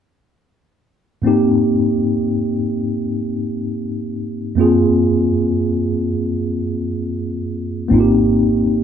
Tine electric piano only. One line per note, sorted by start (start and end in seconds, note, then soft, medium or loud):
1.22 4.52 G#2 medium
1.22 4.52 A#3 soft
1.22 4.53 C4 medium
1.26 4.54 D#4 soft
1.26 4.54 G4 medium
4.55 7.85 F#2 medium
4.55 7.86 A#3 soft
4.55 7.86 C4 medium
4.60 7.87 F4 medium
4.60 7.88 G#4 medium
7.88 8.84 A#3 medium
7.88 8.84 C4 medium
7.88 8.84 D#4 medium
7.94 7.99 F4 medium
8.00 8.84 G4 medium